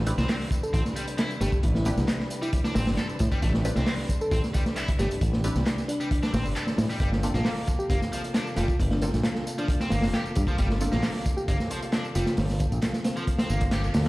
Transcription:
Already playing: A1 C3 G3 D4 B4
0.06 C4 D4 E4 G4 B4, closed hi-hat, tambourine
0.18 C2 C4, snare, tambourine
0.29 C4, snare, clap, open hi-hat, tambourine
0.40 snare
0.51 kick, closed hi-hat, tambourine
0.63 A4, tambourine
0.74 A1 C4, kick, closed hi-hat, tambourine
0.85 snare, tambourine
0.96 G3, closed hi-hat, tambourine
1.07 closed hi-hat, tambourine
1.18 E4, snare, clap, closed hi-hat, tambourine
1.31 tambourine
1.41 G1 A3 G4, snare, closed hi-hat, tambourine
1.52 kick, tambourine
1.63 A1, kick, closed hi-hat, tambourine
1.75 E4, snare
1.85 C4 D4 E4 G4 B4, snare, closed hi-hat, tambourine
1.97 C2, snare, tambourine
2.08 snare, clap, closed hi-hat, tambourine
2.20 snare
2.30 closed hi-hat, tambourine
2.42 G3 E4, tambourine
2.53 kick, closed hi-hat, tambourine
2.64 D4, snare, tambourine
2.75 A1 C4, snare, open hi-hat, tambourine
2.87 G1, snare, open hi-hat, tambourine
2.97 A4, snare, clap, closed hi-hat, tambourine
3.09 tambourine
3.19 A2, kick, closed hi-hat, tambourine
3.32 G3, kick, tambourine
3.42 A1 A3, kick, closed hi-hat, tambourine
3.54 snare
3.65 C4 D4 E4 G4 B4, closed hi-hat, tambourine
3.76 C2 C4, snare, tambourine
3.87 C4, snare, clap, open hi-hat, tambourine
3.98 snare
4.09 kick, closed hi-hat, tambourine
4.21 A4, tambourine
4.31 A1 C4, kick, closed hi-hat, tambourine
4.44 snare, tambourine
4.54 G3, kick, closed hi-hat, tambourine
4.66 snare, tambourine
4.76 E4, clap, closed hi-hat, tambourine
4.88 kick, closed hi-hat, tambourine
4.99 G1 A3 G4, snare, tambourine
5.11 closed hi-hat, tambourine
5.21 A1, kick, closed hi-hat, tambourine
5.33 snare
5.44 C4 D4 E4 G4 B4, closed hi-hat, tambourine
5.55 C2, snare, tambourine
5.67 snare, clap, closed hi-hat, tambourine
5.78 snare, tambourine
5.88 D4, closed hi-hat, tambourine
6.00 G3, tambourine
6.11 kick, closed hi-hat, tambourine
6.23 D4, snare, tambourine
6.33 A1 C4, snare, open hi-hat, tambourine
6.45 G1, tambourine
6.56 A4, clap, closed hi-hat, tambourine
6.67 snare, tambourine
6.78 A2, snare, open hi-hat, tambourine
6.89 G3, snare, tambourine
7.00 G1 C3 G3 A#3 F4 A4, kick, closed hi-hat, tambourine
7.12 snare
7.23 A#3 C4 D4 F4 A4, closed hi-hat, tambourine
7.34 A#1 A#3, snare, tambourine
7.45 A#3, snare, clap, open hi-hat, tambourine
7.56 snare
7.67 kick, closed hi-hat, tambourine
7.79 G4, tambourine
7.90 G1 A#3, kick, closed hi-hat, tambourine
8.02 snare, tambourine
8.12 F3, closed hi-hat, tambourine
8.24 closed hi-hat, tambourine
8.34 D4, snare, clap, closed hi-hat, tambourine
8.47 tambourine
8.56 F1 G3 F4, snare, closed hi-hat, tambourine
8.68 kick, tambourine
8.80 G1, kick, closed hi-hat, tambourine
8.91 D4, snare
9.02 A#3 C4 D4 F4 A4, snare, closed hi-hat, tambourine
9.14 A#1, snare, tambourine
9.24 snare, clap, closed hi-hat, tambourine
9.35 snare
9.47 closed hi-hat, tambourine
9.58 F3 D4, tambourine
9.68 kick, closed hi-hat, tambourine
9.80 C4, snare, tambourine
9.90 G1 A#3, snare, open hi-hat, tambourine
10.02 F1, snare, open hi-hat, tambourine
10.13 G4, snare, clap, closed hi-hat, tambourine
10.26 tambourine
10.35 G2, kick, closed hi-hat, tambourine
10.47 F3, kick, tambourine
10.58 G1 G3, kick, closed hi-hat, tambourine
10.70 snare
10.81 A#3 C4 D4 F4 A4, closed hi-hat, tambourine
10.92 A#1 A#3, snare, tambourine
11.03 A#3, snare, clap, open hi-hat, tambourine
11.14 snare
11.26 kick, closed hi-hat, tambourine
11.37 G4, tambourine
11.48 G1 A#3, kick, closed hi-hat, tambourine
11.60 snare, tambourine
11.70 F3, closed hi-hat, tambourine
11.82 closed hi-hat, tambourine
11.92 D4, snare, clap, closed hi-hat, tambourine
12.05 tambourine
12.15 F1 G3 F4, closed hi-hat, tambourine
12.26 snare, tambourine
12.37 G1, snare, open hi-hat, tambourine
12.50 snare, tambourine
12.60 kick, closed hi-hat, tambourine
12.72 A#1, tambourine
12.82 snare, clap, closed hi-hat, tambourine
12.93 snare, tambourine
13.04 C4, snare, closed hi-hat, tambourine
13.17 F3, tambourine
13.27 kick, closed hi-hat, tambourine
13.38 C4, snare, closed hi-hat, tambourine
13.50 G1 A#3, tambourine
13.61 kick, closed hi-hat, tambourine
13.71 G4, snare, clap, closed hi-hat, tambourine
13.84 tambourine
13.94 D2, snare, open hi-hat, tambourine

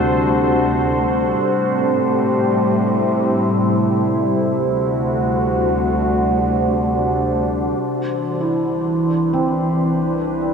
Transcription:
Already playing: D2 C3 G3 D4 F#4 A4 C5
1.39 A2 G3
2.12 E4
4.61 D2 F#4
4.86 D4
7.81 C2 E3
8.40 E4 B4
9.33 C4

